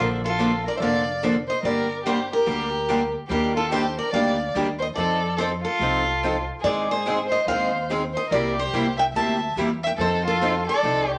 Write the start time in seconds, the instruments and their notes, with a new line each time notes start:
Already playing: upright bass A#1
0.00 steel-string acoustic guitar D3 F3 A#3 D4 A4 A#4
0.24 violin F4, steel-string acoustic guitar A4
0.39 steel-string acoustic guitar D3 F3 A#3 D4 A4
0.65 violin A#4, steel-string acoustic guitar D5
0.76 upright bass F1, steel-string acoustic guitar D3 F3 E5, violin C5
0.81 steel-string acoustic guitar A#3 D4 A4 F5, violin D5
1.22 steel-string acoustic guitar D3 F3 A#3 D4 A4
1.48 violin C5, steel-string acoustic guitar D#5
1.63 upright bass G1, steel-string acoustic guitar D3 G3 A#3 D4 G4 D5, violin A#4
2.04 steel-string acoustic guitar D3 G3 A#3 D4 G4 C5, violin G4
2.32 violin G4, steel-string acoustic guitar A#4
2.46 upright bass D2, steel-string acoustic guitar D3 G3 A#3 D4 G4
2.89 steel-string acoustic guitar D3 G3 A#3 D4 G4
3.27 upright bass D#2, steel-string acoustic guitar D#3 G3 A#3 D4 G4, violin G4
3.32 steel-string acoustic guitar A#4
3.56 violin F4, steel-string acoustic guitar A4
3.71 steel-string acoustic guitar D#3 G3 A#3 D4 G4 C5, violin G4
3.99 violin A#4, steel-string acoustic guitar D5
4.12 upright bass D2, steel-string acoustic guitar D#3 G3 A#3 D4 G4 F5, violin D5
4.54 upright bass D#2, steel-string acoustic guitar D#3 G3 A#3 D4 G4
4.79 violin C5, steel-string acoustic guitar D#5
4.95 upright bass F2, steel-string acoustic guitar F3 C4 D#4 A4 D5, violin A4
5.36 steel-string acoustic guitar F3 C4 D#4 A4 C5, violin A4
5.63 violin F4, steel-string acoustic guitar A4
5.79 upright bass C2, steel-string acoustic guitar F3 C4 D#4 A4
6.24 steel-string acoustic guitar F3 C4 D#4 A4
6.61 upright bass G#2, steel-string acoustic guitar D#3 D5, violin G#4
6.65 steel-string acoustic guitar G#3 C4 D#4 G#4
6.87 violin G#4
6.91 steel-string acoustic guitar C5
7.06 steel-string acoustic guitar D#3 G#3 C4 D#4 G#4
7.29 violin C5, steel-string acoustic guitar D#5
7.45 upright bass D#2, steel-string acoustic guitar D#3 G#3 C4 G#4 F5, violin C5
7.49 steel-string acoustic guitar D#4
7.89 steel-string acoustic guitar D#3 G#3 C4 D#4 G#4
8.13 violin C5, steel-string acoustic guitar D#5
8.30 upright bass C2, steel-string acoustic guitar C3 G3 A#3 D5, violin A#4
8.34 steel-string acoustic guitar E4 G4
8.56 violin G4, steel-string acoustic guitar C5
8.73 upright bass C2, steel-string acoustic guitar C3 G3 A#3 E4 G4
8.97 violin E5, steel-string acoustic guitar G5
9.13 upright bass D2, steel-string acoustic guitar C3 G3 A#3 E4 G4 A5, violin E5
9.56 upright bass E2, steel-string acoustic guitar C3 G3 A#3 E4 G4
9.83 violin E5, steel-string acoustic guitar G5
9.98 upright bass F2, steel-string acoustic guitar F3 C4 D#4 A4 C5, violin A4
10.26 violin F4, steel-string acoustic guitar A4
10.43 steel-string acoustic guitar F3 C4 D#4 A4
10.67 violin A4, steel-string acoustic guitar D5
10.83 upright bass C2, steel-string acoustic guitar F3 C4 D#4 A4
11.07 violin G4
11.13 steel-string acoustic guitar C5